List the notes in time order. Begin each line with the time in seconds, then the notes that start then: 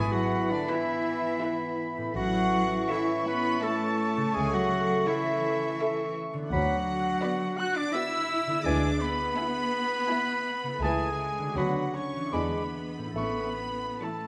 Already playing: G#1 G#2 E3 G#3 B3 E4 G#4 B4 G#5 B5
0.12 F#3 F#4 F#5
0.50 D3 D4 D5
0.69 E3 E4 B4 E5 B5
1.43 E4 B4 E5 B5
1.97 A2
2.02 C#4
2.06 E4
2.11 E3 C#4 A4
2.15 A1 F#3 E4 F#4 F#5 C#6
2.89 E3 E4 A4 E5 C#6
3.27 B3 B4 B5
3.63 A3 E4 A4 E5 A5 C#6
4.17 C#3
4.21 C#4
4.26 E4
4.30 A4
4.35 C#2 G#3 A3 G#4 A4 G#5
4.52 F#3 F#4 F#5
5.08 E3 E4 A4 E5 C#6
5.81 E4 A4 E5 C#6
6.34 D3
6.38 B3
6.43 D4
6.47 F#4 F#5
6.51 D2 F#3 B3 F#4 F#5 B5
7.23 B3 F#4 D5 B5
7.58 F#4 F#5 F#6
7.77 D4 D5 D6
7.93 B3 E4 F#4 D5 E5 B5 E6
8.47 D3
8.51 B3
8.56 E4 G#4
8.63 D2 E3 G#3 D4 E4 D5 G#5 D6
9.01 B3 B4 B5
9.37 B3 E4 E5 G#5
10.09 B3 E4 E5 G#5
10.63 C#3
10.68 E4
10.73 A4
10.81 C#2 E3 G#3 A3 E4 G#4 E5 G#5 A5
11.38 D3
11.43 D4
11.48 F#4
11.52 B4
11.56 D2 F#3 B3 D4 F#4 F#5 B5
11.94 C#4 C#5 C#6
12.16 E3
12.21 D4
12.25 E4
12.30 G#3 B3 G#4 B4 B5 D6
12.34 E2 E3 G#3 D4 G#5 B5
12.98 A2
13.02 C#4
13.06 E4
13.11 A4
13.15 A1 A3 B3 C#4 B4 B5 C#6
13.20 B5
14.03 E3 A3 E4 A4 A5 C#6